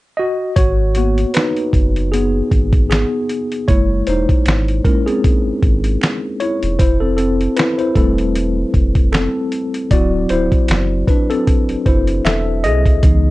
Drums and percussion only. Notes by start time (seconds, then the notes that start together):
0.56 kick, closed hi-hat
0.95 closed hi-hat
1.18 closed hi-hat
1.34 finger snap, closed hi-hat
1.37 finger snap, snare
1.56 closed hi-hat
1.73 kick, closed hi-hat
1.96 closed hi-hat
2.14 closed hi-hat
2.51 kick, closed hi-hat
2.73 kick, closed hi-hat
2.91 finger snap, closed hi-hat
2.92 finger snap, snare
3.29 closed hi-hat
3.52 closed hi-hat
3.68 kick, closed hi-hat
4.07 closed hi-hat
4.29 kick, closed hi-hat
4.46 finger snap, closed hi-hat
4.48 finger snap, snare
4.68 closed hi-hat
4.85 kick, closed hi-hat
5.08 closed hi-hat
5.24 kick, closed hi-hat
5.63 kick, closed hi-hat
5.84 closed hi-hat
6.01 finger snap, closed hi-hat
6.03 finger snap, snare
6.40 closed hi-hat
6.63 closed hi-hat
6.79 kick, closed hi-hat
7.18 closed hi-hat
7.41 closed hi-hat
7.57 finger snap, closed hi-hat
7.59 finger snap, snare
7.79 closed hi-hat
7.95 kick, closed hi-hat
8.18 closed hi-hat
8.35 closed hi-hat
8.74 kick, closed hi-hat
8.95 kick, closed hi-hat
9.13 finger snap, closed hi-hat
9.15 finger snap, snare
9.52 closed hi-hat
9.74 closed hi-hat
9.91 kick, closed hi-hat
10.29 closed hi-hat
10.52 kick, closed hi-hat
10.68 finger snap, closed hi-hat
10.71 finger snap, snare
11.08 kick, closed hi-hat
11.31 closed hi-hat
11.47 kick, closed hi-hat
11.69 closed hi-hat
11.86 kick, closed hi-hat
12.07 closed hi-hat
12.25 finger snap, closed hi-hat
12.27 finger snap, snare
12.64 closed hi-hat
12.86 kick, closed hi-hat
13.03 kick, closed hi-hat